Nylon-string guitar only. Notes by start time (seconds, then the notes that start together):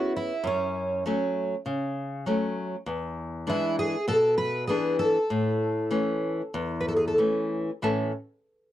Already playing: B3 C#4 E4
0.44 F#2
1.06 F#3 A3 C#4
1.66 C#3
2.26 F#3 A3 C#4
2.86 E2
3.47 E3 G#3 D4
4.08 B2
4.69 E3 B3 D4
5.30 A2
5.91 E3 A3 C#4
6.54 E2
7.18 E3 A3 C#4
7.82 A2 E3 C#4 A4 E5 A5